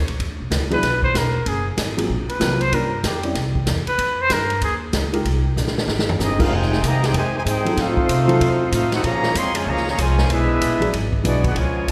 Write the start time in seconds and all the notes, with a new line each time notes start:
0.08 A#1, ride
0.20 E2, kick, ride
0.30 D2
0.40 B1
0.51 C#2, kick, snare, hi-hat pedal, ride
0.70 F#3 B3 D4 E4 G#4 B4, ride
0.82 B1, kick, snare, ride
1.03 C5, kick
1.14 E1 A#4, kick, snare, hi-hat pedal, ride
1.46 F#1 G#4, kick, ride
1.77 G#1, kick, snare, hi-hat pedal, ride
1.97 F#3 A#3 C4 F4 G#4, ride
2.09 A#1, kick
2.28 B4, muted upright bass stroke, ride
2.40 C2 F#3 A#3 C4 F4 A#4, kick, snare, hi-hat pedal, ride
2.61 C5, ride
2.72 G2 G3 A#3 C#4 F4 A#4, kick, ride
3.04 F2 G4, kick, snare, hi-hat pedal, ride
3.23 G3 C4 C#4 E4 G4, ride
3.35 C2, kick, snare, ride
3.55 kick
3.66 E2, kick, snare, hi-hat pedal, ride
3.86 B4, muted upright bass stroke, ride
3.98 F2, kick, ride
4.21 C5
4.30 G2 A#4, kick, snare, hi-hat pedal, ride
4.50 ride
4.62 D#2 G#4, kick, ride
4.93 C#2, kick, snare, hi-hat pedal, ride
5.12 G#3 D#4 F4 G4 A#4, ride
5.25 C2, kick, ride
5.56 A#1, snare, hi-hat pedal
5.67 snare
5.78 snare
5.87 G#1, snare
5.99 snare
6.09 floor tom
6.19 G1 G#3 C4 D#4 G4 G#4 D#5, snare, hi-hat pedal
6.38 G#3 C4 D#4 F4 G4 G#4 A#4 F5, kick, crash
6.42 D#4 C5
6.51 F1 C3 D#3 G#3 D#4 C5 G5 G#5, kick
6.62 snare
6.73 snare
6.83 C2 C3 D#3 A#3 G#4 D#5 G5, kick, hi-hat pedal, ride
6.87 A#5
7.03 C4 D#4 G4 G#4 C5 G5, snare, ride
7.14 F2 C3 D#3 G#3 D#4 G4 C5 G#5, kick, ride
7.35 C3 D#3 G#3 D#4 G4 C5 G#5
7.45 G#2 C4 D#4 G#4, kick, hi-hat pedal, ride
7.49 D#4 G#4 C5 G5
7.65 F#3 C4 D#4 F4 A4, ride
7.77 A2 A3 C4 D#4 F4 A4 C5 F5, kick, snare, ride
7.97 kick
8.09 C3, kick, hi-hat pedal, ride
8.28 F#3 C4 D#4 F4 A4, ride
8.40 F2, kick, ride
8.72 A2 A3 C4 D#4 F4 A4 C5 F5, kick, hi-hat pedal, ride
8.92 C4 D#4 F#4 A4 C5 F#5, snare, ride
9.03 A#2 C#3 F3 A#3 G#4 C#5 F5 A#5, kick, ride
9.23 snare
9.35 F2 F3 G#3 C4 G#4 C#5 F5 C6, kick, hi-hat pedal, ride
9.54 C#3 F3 G#3 F4 C5 C#5 G#5, ride
9.66 C#2 C#3 F3 A#3 G#4 C#5 F5 A#5, kick
9.77 snare
9.86 C#3 F3 A#3, snare
9.90 G#4 C#5 F5 A#5
9.98 C2 F3 G#3 C#4 F4 C5 C#5 G#5, kick, hi-hat pedal, ride
10.18 snare
10.30 B1 G#3 B3 D4 E4 G#4 B4 E5, kick, ride
10.61 A#1, kick, hi-hat pedal, ride
10.80 F#3 B3 D4 E4 G#4, ride
10.93 G#1, kick, ride
11.13 kick
11.23 B1 F#3 G#3 B3 D4 E4 F#4 G#4 B4, kick, hi-hat pedal, ride
11.28 B3 D5
11.43 B3 D4 F#4 B4, kick, ride
11.47 G#4 F#5
11.56 C#2 C#3 F3 G#3 F4 A#4 C#5 G#5, kick, ride
11.87 D#2 C#3 F3 A#3, kick, hi-hat pedal, ride